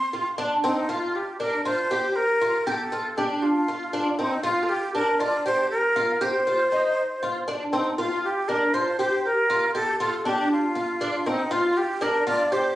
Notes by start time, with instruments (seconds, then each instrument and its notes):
Already playing: flute C6
0.13 twelve-string acoustic guitar F4
0.38 twelve-string acoustic guitar D4
0.64 twelve-string acoustic guitar C4, flute D#4
0.89 twelve-string acoustic guitar F4, flute F4
1.15 flute G4
1.40 twelve-string acoustic guitar D4, flute A#4
1.65 twelve-string acoustic guitar F4, flute C5
1.91 twelve-string acoustic guitar G4
2.16 flute A#4
2.41 twelve-string acoustic guitar F4
2.67 twelve-string acoustic guitar G4, flute A4
2.92 twelve-string acoustic guitar F4
3.17 twelve-string acoustic guitar D4, flute G4
3.42 flute F4
3.68 twelve-string acoustic guitar F4
3.93 twelve-string acoustic guitar D4
4.19 twelve-string acoustic guitar C4, flute D#4
4.43 twelve-string acoustic guitar F4, flute F4
4.63 flute A4
4.69 flute G4
4.95 twelve-string acoustic guitar D4, flute A#4
5.20 twelve-string acoustic guitar F4, flute D5
5.46 twelve-string acoustic guitar G4, flute C5
5.70 flute A#4
5.96 twelve-string acoustic guitar F4
6.21 twelve-string acoustic guitar G4, flute C5
6.47 twelve-string acoustic guitar F4
6.72 twelve-string acoustic guitar D#4
7.23 twelve-string acoustic guitar F4
7.48 twelve-string acoustic guitar D4
7.73 twelve-string acoustic guitar C4, flute D#4
7.98 twelve-string acoustic guitar F4, flute F4
8.24 flute G4
8.48 twelve-string acoustic guitar D4, flute A#4
8.74 twelve-string acoustic guitar F4, flute C5
8.99 twelve-string acoustic guitar G4, flute C5
9.25 flute A#4
9.50 twelve-string acoustic guitar F4
9.75 twelve-string acoustic guitar G4, flute A4
10.00 twelve-string acoustic guitar F4, flute A4
10.25 twelve-string acoustic guitar D4, flute G4
10.51 flute F4
10.75 twelve-string acoustic guitar F4
11.01 twelve-string acoustic guitar D4
11.26 twelve-string acoustic guitar C4, flute D#4
11.51 twelve-string acoustic guitar F4, flute F4
11.77 flute G4
12.01 twelve-string acoustic guitar D4, flute A#4
12.27 twelve-string acoustic guitar F4, flute D5
12.52 twelve-string acoustic guitar G4, flute C5